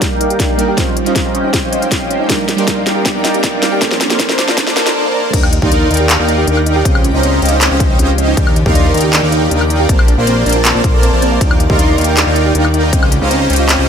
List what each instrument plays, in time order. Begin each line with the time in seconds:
Already playing: ambient pad D#3 A#3 G4 D5, synth keys G3 A#3 D4 D#4 A#4, riser
0.02 synth arpeggio sound D4, kick, snare, closed hi-hat
0.11 supersaw synth D#4 A#4 D5 F5 G5
0.21 synth arpeggio sound D#4, closed hi-hat
0.30 synth arpeggio sound G4, closed hi-hat
0.40 synth arpeggio sound D4, supersaw synth D#4 A#4 D5 F5 G5, kick, snare, closed hi-hat
0.58 synth keys G3 A#3 D4 D#4 A#4, synth arpeggio sound D#4, closed hi-hat
0.68 synth arpeggio sound G4
0.77 ambient pad F3 C#4 D#4 G4 C5, synth keys G3 C#4 D#4 F4 C5, synth arpeggio sound C4, supersaw synth C#4 C5 D#5 F5 G5, kick, snare, closed hi-hat
0.97 synth arpeggio sound C#4, closed hi-hat
1.04 synth keys G3 C#4 D#4 F4 C5, supersaw synth C#4 C5 D#5 F5 A#5, synth arpeggio sound D#4, closed hi-hat
1.16 synth arpeggio sound C4, kick, snare, closed hi-hat
1.34 synth arpeggio sound C#4, supersaw synth C#4 C5 D#5 F5 G5, closed hi-hat
1.44 synth arpeggio sound D#4
1.53 synth arpeggio sound C4, kick, snare, closed hi-hat
1.63 supersaw synth C#4 C5 D#5 F5 G5
1.72 synth arpeggio sound C#4, closed hi-hat
1.82 synth arpeggio sound D#4, closed hi-hat
1.91 supersaw synth C#4 C5 D#5 F5 G5, kick, snare, closed hi-hat
2.10 synth arpeggio sound C#4, closed hi-hat
2.20 synth arpeggio sound D#4
2.29 ambient pad D#3 A#3 A#4 D5, synth keys G3 A#3 D4 D#4 A#4, synth arpeggio sound D4, supersaw synth D#4 A#4 D5 F5 G5, kick, snare, closed hi-hat
2.48 synth arpeggio sound D#4, snare, closed hi-hat
2.56 synth keys G3 A#3 D4 D#4, supersaw synth D#4 A#4 D5 F5 C6, synth arpeggio sound G4, closed hi-hat
2.60 synth keys A#4
2.67 synth arpeggio sound D4, kick, snare, closed hi-hat
2.86 supersaw synth D#4 A#4 D5 F5 G5, synth arpeggio sound D#4, snare, closed hi-hat
2.96 synth arpeggio sound G4
3.05 synth arpeggio sound D4, kick, snare, closed hi-hat
3.15 supersaw synth D#4 A#4 D5 F5 G5
3.24 synth arpeggio sound D#4, snare, closed hi-hat
3.34 synth arpeggio sound G4, closed hi-hat
3.43 synth arpeggio sound D4, supersaw synth D#4 A#4 D5 F5 G5, kick, snare, closed hi-hat
3.62 synth keys G3 A#3 D4 D#4 A#4, synth arpeggio sound D#4, snare, closed hi-hat
3.72 synth arpeggio sound G4
3.80 synth keys F3 A#3 C4 D4 A4, supersaw synth A#3 A#4 C5 D5 A5, synth arpeggio sound C4, kick, snare, closed hi-hat
3.91 snare
4.00 synth arpeggio sound D4, snare, closed hi-hat
4.08 synth keys F3 A#3 C4 D4, supersaw synth A#3 A#4 C5 D5 C6, synth arpeggio sound F4, snare, closed hi-hat
4.12 synth keys A4
4.19 synth arpeggio sound C4, kick, snare, closed hi-hat
4.29 snare
4.38 supersaw synth A#3 A#4 C5 D5 A5, synth arpeggio sound D4, snare, closed hi-hat
4.48 synth arpeggio sound F4, snare
4.57 synth arpeggio sound C4, kick, snare, closed hi-hat
4.67 supersaw synth A#3 A#4 C5 D5 A5, snare
4.76 synth arpeggio sound F4, snare, closed hi-hat
4.86 synth arpeggio sound A4, snare, closed hi-hat
4.95 supersaw synth A#3 A#4 C5 D5 A5
5.33 analog synth bass D#2, ambient pad D#3 G3 A#3 G4 D5, synth arpeggio sound D4, supersaw synth D#4 A#4 D5 F5 G5, kick, closed hi-hat, crash
5.43 high woodblock
5.52 synth arpeggio sound D#4, closed hi-hat
5.62 analog synth bass D#2, supersaw synth D#4 A#4 D5 F5 C6, synth arpeggio sound G4, kick
5.71 synth arpeggio sound D4, closed hi-hat
5.90 analog synth bass D#2, synth arpeggio sound D#4, supersaw synth D#4 A#4 D5 F5 G5, closed hi-hat
5.94 closed hi-hat
5.97 synth arpeggio sound G4, closed hi-hat
6.09 synth arpeggio sound D4, clap, closed hi-hat
6.19 analog synth bass D#2, supersaw synth D#4 A#4 D5 F5 G5
6.28 synth arpeggio sound D#4, closed hi-hat
6.38 synth arpeggio sound G4
6.47 analog synth bass D#2, synth arpeggio sound D4, supersaw synth D#4 A#4 D5 F5 G5, closed hi-hat
6.57 high woodblock
6.66 synth arpeggio sound D#4, closed hi-hat
6.76 synth arpeggio sound G4
6.85 analog synth bass C#2, ambient pad C#3 F3 D#4 C5, synth arpeggio sound C4, supersaw synth C#4 C5 D#5 F5 G5, kick, closed hi-hat
6.95 high woodblock
7.04 synth arpeggio sound C#4, closed hi-hat
7.14 analog synth bass C#2, supersaw synth C#4 C5 D#5 F5 A#5, synth arpeggio sound D#4
7.23 synth arpeggio sound C4, closed hi-hat
7.42 analog synth bass C#2, synth arpeggio sound C#4, supersaw synth C#4 C5 D#5 F5 G5, closed hi-hat
7.45 closed hi-hat
7.49 synth arpeggio sound D#4, closed hi-hat
7.61 synth arpeggio sound C4, clap, closed hi-hat
7.71 analog synth bass C#2, supersaw synth C#4 C5 D#5 F5 G5
7.80 synth arpeggio sound C#4, kick, closed hi-hat
7.90 synth arpeggio sound D#4
7.99 analog synth bass C#2, synth arpeggio sound C4, supersaw synth C#4 C5 D#5 F5 G5, closed hi-hat
8.18 synth arpeggio sound C#4, closed hi-hat
8.28 synth arpeggio sound D#4
8.37 analog synth bass D#2, ambient pad D#3 G3 A#3 G4 D5, synth arpeggio sound D4, supersaw synth D#4 A#4 D5 F5 G5, kick, closed hi-hat
8.47 high woodblock
8.56 synth arpeggio sound D#4, closed hi-hat
8.66 analog synth bass D#2, supersaw synth D#4 A#4 D5 F5 C6, synth arpeggio sound G4, kick
8.75 synth arpeggio sound D4, closed hi-hat
8.94 analog synth bass D#2, synth arpeggio sound D#4, supersaw synth D#4 A#4 D5 F5 G5, closed hi-hat
8.97 closed hi-hat
9.01 synth arpeggio sound G4, closed hi-hat
9.13 synth arpeggio sound D4, clap, closed hi-hat
9.23 analog synth bass D#2, supersaw synth D#4 A#4 D5 F5 G5
9.32 synth arpeggio sound D#4, closed hi-hat
9.42 synth arpeggio sound G4
9.51 analog synth bass D#2, synth arpeggio sound D4, supersaw synth D#4 A#4 D5 F5 G5, closed hi-hat
9.61 high woodblock
9.70 synth arpeggio sound D#4, closed hi-hat
9.80 synth arpeggio sound G4
9.89 analog synth bass A#1, ambient pad C3 A3 F4, supersaw synth A#3 A#4 C5 D5 A5, synth arpeggio sound C4, kick, closed hi-hat
9.99 high woodblock
10.08 synth arpeggio sound D4, closed hi-hat
10.18 analog synth bass A#1, supersaw synth A#3 A#4 C5 D5 C6, synth arpeggio sound F4
10.27 synth arpeggio sound C4, closed hi-hat
10.46 analog synth bass A#1, supersaw synth A#3 A#4 C5 D5 A5, synth arpeggio sound D4, closed hi-hat
10.49 closed hi-hat
10.52 synth arpeggio sound F4, closed hi-hat
10.65 synth arpeggio sound C4, clap, closed hi-hat
10.75 analog synth bass A#1, supersaw synth A#3 A#4 C5 D5 A5
10.84 analog synth bass A#1, supersaw synth A#3 A#4 C5 D5 C6, synth arpeggio sound F4, kick, closed hi-hat
10.94 analog synth bass A#1, supersaw synth A#3 A#4 C5 D5 A5, synth arpeggio sound A4
11.03 synth arpeggio sound C4, closed hi-hat
11.13 analog synth bass A#1, supersaw synth A#3 A#4 C5 D5 A5
11.22 synth arpeggio sound C4, closed hi-hat
11.32 synth arpeggio sound F4
11.41 analog synth bass D#2, ambient pad D#3 G3 G4, synth arpeggio sound D4, supersaw synth D#4 A#4 D5 F5 G5, kick, closed hi-hat
11.51 high woodblock
11.60 synth arpeggio sound D#4, closed hi-hat
11.70 analog synth bass D#2, supersaw synth D#4 A#4 D5 F5 C6, synth arpeggio sound G4, kick
11.79 synth arpeggio sound D4, closed hi-hat
11.98 analog synth bass D#2, synth arpeggio sound D#4, supersaw synth D#4 A#4 D5 F5 G5, closed hi-hat
12.01 closed hi-hat
12.04 synth arpeggio sound A#4, closed hi-hat
12.17 synth arpeggio sound D4, clap, closed hi-hat
12.27 analog synth bass D#2, supersaw synth D#4 A#4 D5 F5 G5
12.36 synth arpeggio sound D#4, closed hi-hat
12.46 synth arpeggio sound G4
12.55 analog synth bass D#2, synth arpeggio sound D4, supersaw synth D#4 A#4 D5 F5 G5, closed hi-hat
12.65 high woodblock
12.74 synth arpeggio sound D#4, closed hi-hat
12.84 synth arpeggio sound A#4
12.93 analog synth bass C#2, ambient pad C#3 F3 D#4 C5, synth arpeggio sound C4, supersaw synth C#4 C5 D#5 F5 G5, kick, closed hi-hat
13.03 high woodblock
13.12 synth arpeggio sound C#4, closed hi-hat
13.22 analog synth bass C#2, supersaw synth C#4 C5 D#5 F5 A#5, synth arpeggio sound D#4
13.31 synth arpeggio sound C4, closed hi-hat
13.50 analog synth bass C#2, synth arpeggio sound C#4, supersaw synth C#4 C5 D#5 F5 G5, closed hi-hat
13.53 closed hi-hat
13.56 synth arpeggio sound F4, closed hi-hat
13.69 synth arpeggio sound C4, clap, closed hi-hat
13.79 analog synth bass C#2, supersaw synth C#4 C5 D#5 F5 G5